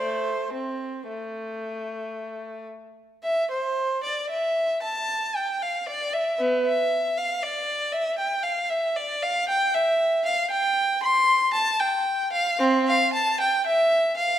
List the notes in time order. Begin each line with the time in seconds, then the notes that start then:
Already playing: A3 C5
0.53 C4
1.08 A3
3.24 E5
3.51 C5
4.03 D5
4.30 E5
4.82 A5
5.36 G5
5.62 F5
5.88 D5
6.13 E5
6.40 B3
6.66 E5
7.18 F5
7.43 D5
7.93 E5
8.18 G5
8.43 F5
8.70 E5
8.96 D5
9.22 F5
9.49 G5
9.74 E5
10.25 F5
10.51 G5
11.03 C6
11.53 A5
11.80 G5
12.32 F5
12.59 C4
12.87 F5
13.13 A5
13.40 G5
13.66 E5
14.17 F5